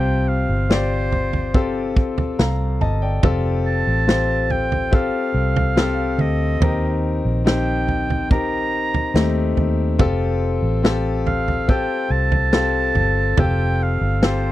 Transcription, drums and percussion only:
0.71 snare
1.12 floor tom
1.33 floor tom
1.54 kick
1.97 kick
2.18 floor tom
2.39 snare
2.81 floor tom
3.23 kick, floor tom
4.09 snare
4.50 floor tom
4.72 floor tom
4.93 kick
5.56 floor tom
5.77 snare
6.19 floor tom
6.62 floor tom
7.47 snare
7.88 floor tom
8.10 floor tom
8.31 kick, floor tom
8.94 floor tom
9.16 snare
9.57 floor tom
9.99 kick, floor tom
10.85 snare
11.27 floor tom
11.48 floor tom
11.69 kick
12.32 floor tom
12.53 snare
12.95 floor tom
13.38 floor tom
14.23 snare

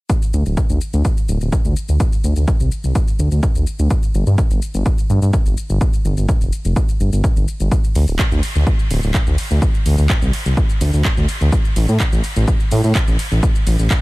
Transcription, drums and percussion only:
0.10 kick, shaker
0.22 shaker
0.33 shaker
0.46 shaker
0.57 kick, shaker
0.69 shaker
0.81 shaker
0.93 shaker
1.05 kick, shaker
1.17 shaker
1.29 shaker
1.41 shaker
1.52 kick, shaker
1.65 shaker
1.76 shaker
1.89 shaker
2.00 kick, shaker
2.12 shaker
2.24 shaker
2.36 shaker
2.48 kick, shaker
2.60 shaker
2.72 shaker
2.84 shaker
2.95 kick, shaker
3.08 shaker
3.19 shaker
3.31 shaker
3.43 kick, shaker
3.55 shaker
3.67 shaker
3.79 shaker
3.90 kick, shaker
4.03 shaker
4.14 shaker
4.27 shaker
4.38 kick, shaker
4.50 shaker
4.62 shaker
4.74 shaker
4.86 kick, shaker
4.98 shaker
5.10 shaker
5.22 shaker
5.33 kick, shaker
5.46 shaker
5.57 shaker
5.70 shaker
5.81 kick, shaker
5.93 shaker
6.05 shaker
6.17 shaker
6.29 kick, shaker
6.41 shaker
6.53 shaker
6.65 shaker
6.76 kick, shaker
6.89 shaker
7.00 shaker
7.13 shaker
7.24 kick, shaker
7.36 shaker
7.48 shaker
7.60 shaker
7.72 kick, shaker
7.84 shaker
7.95 open hi-hat, shaker
8.08 shaker
8.19 kick, clap, shaker
8.32 shaker
8.43 open hi-hat, shaker
8.55 shaker
8.67 kick, shaker
8.79 shaker
8.91 open hi-hat, shaker
9.03 shaker
9.14 kick, clap, shaker
9.27 shaker
9.38 open hi-hat, shaker
9.51 shaker
9.62 kick, shaker
9.74 shaker
9.86 open hi-hat, shaker
9.98 shaker
10.10 kick, clap, shaker
10.22 shaker
10.33 open hi-hat, shaker
10.46 shaker
10.57 kick, shaker
10.70 shaker
10.81 open hi-hat, shaker
10.93 shaker
11.05 kick, clap, shaker
11.17 shaker
11.29 open hi-hat, shaker
11.41 shaker
11.52 kick, shaker
11.65 shaker
11.76 open hi-hat, shaker
11.89 shaker
12.00 kick, clap, shaker
12.12 shaker
12.24 open hi-hat, shaker
12.36 shaker
12.48 kick, shaker
12.60 shaker
12.71 open hi-hat, shaker
12.84 shaker
12.95 kick, clap, shaker
13.08 shaker
13.19 open hi-hat, shaker
13.31 shaker
13.43 kick, shaker
13.55 shaker
13.67 open hi-hat, shaker
13.79 shaker
13.90 kick, clap, shaker

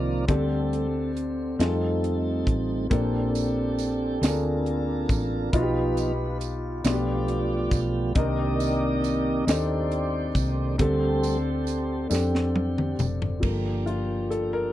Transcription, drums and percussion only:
0.28 kick, closed hi-hat
0.73 closed hi-hat
1.17 closed hi-hat
1.60 snare, closed hi-hat
2.04 closed hi-hat
2.47 kick, closed hi-hat
2.91 kick, closed hi-hat
3.35 closed hi-hat, tambourine
3.79 closed hi-hat, tambourine
4.23 snare, closed hi-hat, tambourine
4.66 closed hi-hat
5.09 kick, closed hi-hat, tambourine
5.53 kick, closed hi-hat
5.97 closed hi-hat, tambourine
6.41 closed hi-hat, tambourine
6.84 snare, closed hi-hat, tambourine
7.28 closed hi-hat
7.71 kick, closed hi-hat, tambourine
8.15 kick, closed hi-hat
8.60 closed hi-hat, tambourine
9.04 closed hi-hat, tambourine
9.48 snare, closed hi-hat, tambourine
9.92 closed hi-hat
10.35 kick, closed hi-hat, tambourine
10.79 kick, closed hi-hat
11.23 closed hi-hat, tambourine
11.67 closed hi-hat, tambourine
12.11 snare, tambourine
12.35 snare
12.55 high tom
12.78 mid tom
12.99 mid tom, tambourine
13.22 floor tom
13.43 kick, crash
13.87 closed hi-hat
14.32 closed hi-hat

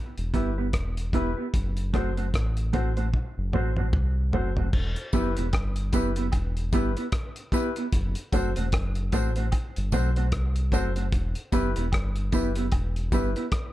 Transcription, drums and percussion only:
0.18 closed hi-hat
0.34 kick, closed hi-hat
0.73 kick, cross-stick, closed hi-hat
0.97 closed hi-hat
1.13 kick, closed hi-hat
1.54 kick, closed hi-hat
1.77 closed hi-hat
1.94 kick, cross-stick, closed hi-hat
2.17 closed hi-hat
2.34 kick, cross-stick, closed hi-hat
2.57 closed hi-hat
2.73 kick, closed hi-hat
2.97 closed hi-hat
3.14 kick, high tom
3.53 mid tom
3.77 mid tom
3.93 kick, mid tom
4.33 floor tom
4.57 floor tom
4.73 kick, crash
4.96 closed hi-hat
5.13 kick, closed hi-hat, tambourine
5.37 closed hi-hat
5.53 kick, cross-stick, closed hi-hat, high woodblock
5.76 closed hi-hat
5.93 kick, closed hi-hat, tambourine
6.16 closed hi-hat
6.32 kick, closed hi-hat, high woodblock
6.57 closed hi-hat
6.72 kick, closed hi-hat, tambourine
6.97 closed hi-hat
7.12 kick, cross-stick, closed hi-hat
7.36 closed hi-hat
7.52 kick, closed hi-hat, tambourine
7.76 closed hi-hat
7.92 kick, closed hi-hat
8.15 closed hi-hat
8.33 kick, closed hi-hat, tambourine
8.56 closed hi-hat
8.72 kick, cross-stick, closed hi-hat, high woodblock
8.95 closed hi-hat
9.12 kick, closed hi-hat, tambourine
9.36 closed hi-hat
9.52 kick, closed hi-hat, high woodblock
9.76 closed hi-hat
9.92 kick, closed hi-hat, tambourine
10.16 closed hi-hat
10.32 kick, cross-stick, closed hi-hat
10.56 closed hi-hat
10.72 kick, closed hi-hat, tambourine
10.96 closed hi-hat
11.12 kick, closed hi-hat
11.35 closed hi-hat
11.52 kick, closed hi-hat, tambourine
11.76 closed hi-hat
11.92 kick, cross-stick, closed hi-hat, high woodblock
12.16 closed hi-hat
12.32 kick, closed hi-hat, tambourine
12.55 closed hi-hat
12.72 kick, closed hi-hat, high woodblock
12.96 closed hi-hat
13.12 kick, closed hi-hat, tambourine
13.36 closed hi-hat
13.52 kick, cross-stick, closed hi-hat

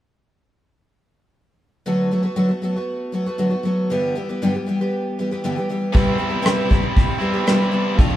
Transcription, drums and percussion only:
5.95 kick, open hi-hat
6.45 cross-stick, open hi-hat
6.71 kick
6.96 kick, open hi-hat
7.47 cross-stick, open hi-hat
7.99 kick, open hi-hat

